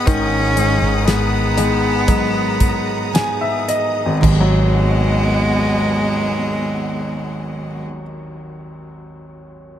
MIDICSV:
0, 0, Header, 1, 7, 480
1, 0, Start_track
1, 0, Key_signature, 5, "minor"
1, 0, Tempo, 1003344
1, 36, Time_signature, 4, 2, 24, 8
1, 997, Tempo, 1054482
1, 1477, Tempo, 1088929
1, 4411, End_track
2, 0, Start_track
2, 0, Title_t, "String section"
2, 0, Program_c, 0, 48
2, 0, Note_on_c, 0, 68, 74
2, 0, Note_on_c, 0, 78, 72
2, 0, Note_on_c, 0, 87, 86
2, 38, Note_on_c, 0, 82, 72
2, 1937, Note_off_c, 0, 68, 0
2, 1937, Note_off_c, 0, 78, 0
2, 1937, Note_off_c, 0, 87, 0
2, 1940, Note_off_c, 0, 82, 0
2, 1956, Note_on_c, 0, 75, 71
2, 1956, Note_on_c, 0, 78, 84
2, 1958, Note_on_c, 0, 59, 82
2, 1959, Note_on_c, 0, 68, 71
2, 3546, Note_off_c, 0, 75, 0
2, 3546, Note_off_c, 0, 78, 0
2, 3548, Note_off_c, 0, 59, 0
2, 3549, Note_off_c, 0, 68, 0
2, 4411, End_track
3, 0, Start_track
3, 0, Title_t, "Cello"
3, 0, Program_c, 1, 42
3, 25, Note_on_c, 1, 61, 102
3, 505, Note_on_c, 1, 59, 89
3, 512, Note_off_c, 1, 61, 0
3, 1713, Note_off_c, 1, 59, 0
3, 1961, Note_on_c, 1, 56, 96
3, 3551, Note_off_c, 1, 56, 0
3, 4411, End_track
4, 0, Start_track
4, 0, Title_t, "Steel-string acoustic guitar"
4, 0, Program_c, 2, 25
4, 0, Note_on_c, 2, 54, 63
4, 0, Note_on_c, 2, 59, 54
4, 0, Note_on_c, 2, 63, 55
4, 0, Note_on_c, 2, 68, 66
4, 28, Note_on_c, 2, 44, 81
4, 264, Note_off_c, 2, 59, 0
4, 266, Note_on_c, 2, 59, 53
4, 270, Note_off_c, 2, 63, 0
4, 271, Note_off_c, 2, 68, 0
4, 272, Note_on_c, 2, 63, 53
4, 273, Note_on_c, 2, 68, 62
4, 748, Note_off_c, 2, 59, 0
4, 750, Note_on_c, 2, 59, 60
4, 751, Note_off_c, 2, 63, 0
4, 753, Note_on_c, 2, 63, 62
4, 754, Note_off_c, 2, 68, 0
4, 756, Note_on_c, 2, 68, 60
4, 988, Note_off_c, 2, 54, 0
4, 994, Note_on_c, 2, 54, 64
4, 1469, Note_off_c, 2, 59, 0
4, 1471, Note_on_c, 2, 59, 49
4, 1472, Note_off_c, 2, 63, 0
4, 1474, Note_on_c, 2, 63, 56
4, 1475, Note_off_c, 2, 68, 0
4, 1477, Note_on_c, 2, 68, 58
4, 1926, Note_off_c, 2, 44, 0
4, 1932, Note_on_c, 2, 44, 69
4, 1948, Note_on_c, 2, 51, 74
4, 1962, Note_off_c, 2, 54, 0
4, 1964, Note_on_c, 2, 54, 73
4, 1976, Note_off_c, 2, 59, 0
4, 1977, Note_on_c, 2, 59, 75
4, 1986, Note_off_c, 2, 63, 0
4, 1988, Note_on_c, 2, 63, 76
4, 1998, Note_off_c, 2, 68, 0
4, 2000, Note_on_c, 2, 68, 91
4, 3539, Note_off_c, 2, 44, 0
4, 3555, Note_off_c, 2, 51, 0
4, 3571, Note_off_c, 2, 54, 0
4, 3585, Note_off_c, 2, 59, 0
4, 3595, Note_off_c, 2, 63, 0
4, 3607, Note_off_c, 2, 68, 0
4, 4411, End_track
5, 0, Start_track
5, 0, Title_t, "Grand piano"
5, 0, Program_c, 3, 0
5, 0, Control_c, 3, 64, 127
5, 0, Note_on_c, 3, 56, 61
5, 32, Note_on_c, 3, 51, 69
5, 268, Note_off_c, 3, 56, 0
5, 268, Note_on_c, 3, 56, 51
5, 496, Note_off_c, 3, 56, 0
5, 503, Note_on_c, 3, 56, 54
5, 745, Note_off_c, 3, 56, 0
5, 752, Note_on_c, 3, 56, 52
5, 989, Note_off_c, 3, 56, 0
5, 996, Note_on_c, 3, 56, 53
5, 1478, Note_on_c, 3, 80, 58
5, 1588, Note_off_c, 3, 80, 0
5, 1597, Note_on_c, 3, 76, 59
5, 1708, Note_off_c, 3, 76, 0
5, 1718, Note_on_c, 3, 75, 61
5, 1881, Note_on_c, 3, 32, 58
5, 1937, Note_off_c, 3, 51, 0
5, 1939, Note_off_c, 3, 56, 0
5, 1941, Note_off_c, 3, 75, 0
5, 1957, Note_on_c, 3, 39, 47
5, 1962, Control_c, 3, 64, 0
5, 2035, Note_on_c, 3, 54, 65
5, 2046, Control_c, 3, 64, 127
5, 3471, Note_off_c, 3, 32, 0
5, 3546, Note_off_c, 3, 39, 0
5, 3624, Note_off_c, 3, 54, 0
5, 4411, End_track
6, 0, Start_track
6, 0, Title_t, "Fingered electric bass"
6, 0, Program_c, 4, 33
6, 36, Note_on_c, 4, 32, 114
6, 372, Note_off_c, 4, 32, 0
6, 390, Note_on_c, 4, 32, 85
6, 1939, Note_off_c, 4, 32, 0
6, 1957, Note_on_c, 4, 32, 93
6, 3547, Note_off_c, 4, 32, 0
6, 4411, End_track
7, 0, Start_track
7, 0, Title_t, "Drums"
7, 34, Note_on_c, 9, 42, 77
7, 35, Note_on_c, 9, 36, 98
7, 82, Note_off_c, 9, 42, 0
7, 83, Note_off_c, 9, 36, 0
7, 272, Note_on_c, 9, 42, 61
7, 320, Note_off_c, 9, 42, 0
7, 515, Note_on_c, 9, 42, 80
7, 516, Note_on_c, 9, 38, 83
7, 562, Note_off_c, 9, 42, 0
7, 563, Note_off_c, 9, 38, 0
7, 754, Note_on_c, 9, 42, 77
7, 802, Note_off_c, 9, 42, 0
7, 995, Note_on_c, 9, 42, 92
7, 996, Note_on_c, 9, 36, 86
7, 1041, Note_off_c, 9, 36, 0
7, 1041, Note_off_c, 9, 42, 0
7, 1234, Note_on_c, 9, 36, 72
7, 1234, Note_on_c, 9, 42, 69
7, 1279, Note_off_c, 9, 42, 0
7, 1280, Note_off_c, 9, 36, 0
7, 1482, Note_on_c, 9, 42, 84
7, 1485, Note_on_c, 9, 38, 109
7, 1526, Note_off_c, 9, 42, 0
7, 1529, Note_off_c, 9, 38, 0
7, 1718, Note_on_c, 9, 42, 61
7, 1762, Note_off_c, 9, 42, 0
7, 1959, Note_on_c, 9, 36, 97
7, 1961, Note_on_c, 9, 49, 79
7, 2003, Note_off_c, 9, 36, 0
7, 2005, Note_off_c, 9, 49, 0
7, 4411, End_track
0, 0, End_of_file